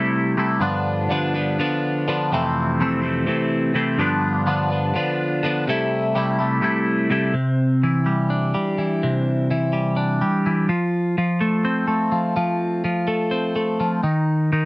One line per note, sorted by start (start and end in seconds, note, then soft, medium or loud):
0.00 0.36 C3 medium
0.00 0.36 G3 medium
0.00 0.38 A3 medium
0.00 0.38 E4 medium
0.37 0.60 C3 medium
0.37 0.61 G3 medium
0.37 0.61 A3 medium
0.37 0.62 E4 medium
0.60 1.08 G2 medium
0.60 1.09 D3 medium
0.60 1.10 F3 medium
0.60 1.10 B3 medium
0.60 1.11 D4 medium
1.09 1.58 G2 medium
1.09 1.57 D3 medium
1.09 1.37 F3 medium
1.09 1.34 B3 medium
1.09 1.33 D4 medium
1.34 1.59 F3 soft
1.34 1.59 B3 medium
1.34 1.60 D4 medium
1.59 2.07 D3 medium
1.59 2.07 F3 medium
1.59 2.08 B3 medium
1.59 2.09 D4 medium
2.08 2.30 D3 medium
2.08 2.33 F3 medium
2.08 2.31 B3 medium
2.08 2.31 D4 medium
2.32 2.79 F2 medium
2.32 2.79 C3 medium
2.32 2.80 E3 medium
2.32 2.81 A3 medium
2.32 2.81 C4 medium
2.80 3.28 F2 medium
2.80 3.25 C3 medium
2.80 3.03 E3 medium
2.80 3.02 A3 loud
2.80 3.01 C4 medium
3.02 3.26 E3 soft
3.02 3.27 A3 medium
3.02 3.28 C4 medium
3.27 3.73 C3 medium
3.27 3.74 E3 medium
3.27 3.75 A3 medium
3.27 3.75 C4 medium
3.74 3.97 C3 medium
3.74 3.98 E3 medium
3.74 3.98 A3 medium
3.74 3.98 C4 medium
3.98 4.45 G2 medium
3.98 4.46 D3 medium
3.98 4.46 F3 medium
3.98 4.47 B3 medium
3.98 4.48 D4 medium
4.46 4.94 G2 medium
4.46 4.93 D3 medium
4.46 4.72 F3 medium
4.46 4.71 B3 medium
4.46 4.69 D4 medium
4.70 4.94 F3 medium
4.70 4.95 B3 medium
4.70 4.95 D4 medium
4.94 5.42 D3 medium
4.94 5.43 F3 medium
4.94 5.44 B3 medium
4.94 5.45 D4 medium
5.43 5.65 D3 medium
5.43 5.66 F3 medium
5.43 5.67 B3 medium
5.43 5.67 D4 medium
5.67 6.14 C3 medium
5.67 6.14 G3 medium
5.67 6.15 A3 medium
5.67 6.17 E4 medium
6.15 6.60 C3 medium
6.15 6.40 G3 medium
6.15 6.39 A3 medium
6.15 6.37 E4 medium
6.39 6.61 G3 medium
6.39 6.62 A3 medium
6.39 6.63 E4 medium
6.61 7.09 C3 medium
6.61 7.09 G3 medium
6.61 7.11 A3 medium
6.61 7.11 E4 medium
7.10 7.33 C3 medium
7.10 7.33 G3 medium
7.10 7.34 A3 medium
7.10 7.33 E4 medium
7.34 8.53 C3 medium
7.83 8.77 E3 medium
8.06 8.53 G3 medium
8.30 9.49 D4 medium
8.54 9.72 G3 medium
8.78 9.50 E3 medium
9.03 10.22 C3 medium
9.51 10.45 E3 medium
9.73 10.20 G3 medium
9.96 10.68 D4 medium
10.21 10.69 G3 medium
10.46 10.69 E3 medium
10.69 11.17 F3 medium
11.18 12.11 F3 medium
11.41 11.86 A3 medium
11.65 12.84 C4 medium
11.88 13.06 A3 medium
12.12 12.36 F3 medium
12.36 12.84 F3 medium
12.84 13.80 F3 medium
13.08 13.54 A3 medium
13.31 14.03 C4 medium
13.56 14.03 A3 medium
13.80 14.03 F3 medium
14.03 14.51 D#3 medium
14.53 14.65 D#3 medium